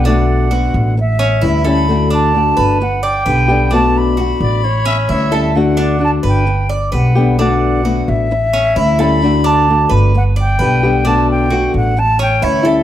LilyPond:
<<
  \new Staff \with { instrumentName = "Flute" } { \time 4/4 \key d \major \tempo 4 = 131 fis''2 e''4. b''8~ | b''8 a''4. fis''8 g''4. | a''8 b''2~ b''8 cis''8 e''8 | fis''4 a''8 g''4 r8 fis''4 |
fis''4. e''2 b''8~ | b''8 a''4 r8 fis''8 g''4. | a''8 g''4 fis''8 a''8 g''8 cis''8 e''8 | }
  \new Staff \with { instrumentName = "Trumpet" } { \time 4/4 \key d \major r1 | r1 | r4. d''8 cis''8 e''8 e''4 | r1 |
r1 | r1 | r1 | }
  \new Staff \with { instrumentName = "Cuban tres" } { \time 4/4 \key d \major d'4 fis'8 r4 cis'8 e'8 a'8~ | a'8 d'4 b'4 d''8 b'4 | d'4 fis'8 r4 cis'8 e'8 a'8 | r8 d'4 b'4 d''8 b'4 |
d'4 fis'8 r4 cis'8 e'8 a'8~ | a'8 d'4 b'4 d''8 b'4 | d'4 fis'8 r4 cis'8 e'8 a'8 | }
  \new Staff \with { instrumentName = "Nylon-string guitar" } { \time 4/4 \key d \major <b, d a b fis'>4 <d a b fis'>4 r4 <e g cis' e'>8 <g cis' e'>8 | <d a d' fis'>4 <d a d' fis'>4 r4 <d g b g'>8 <d g b g'>8 | <b, d a b fis'>4 <d a b fis'>4 r4 <e g cis' e'>8 <g cis' e'>8 | <d a d' fis'>4 <d a d' fis'>4 r4 <d g b g'>8 <d g b g'>8 |
<b, d a b fis'>4 <d a b fis'>4 r4 <e g cis' e'>8 <g cis' e'>8 | <d a d' fis'>4 <d a d' fis'>4 r4 <d g b g'>8 <d g b g'>8 | <b, d a b fis'>4 <d a b fis'>4 r4 <e g cis' e'>8 <g cis' e'>8 | }
  \new Staff \with { instrumentName = "Upright bass" } { \clef bass \time 4/4 \key d \major b,,4. a,,4. d,4~ | d,4. g,,4. b,,4~ | b,,4. a,,4. d,4~ | d,4. g,,4. b,,4~ |
b,,4. a,,4. d,4~ | d,4. g,,4. b,,4~ | b,,4. a,,4. d,4 | }
>>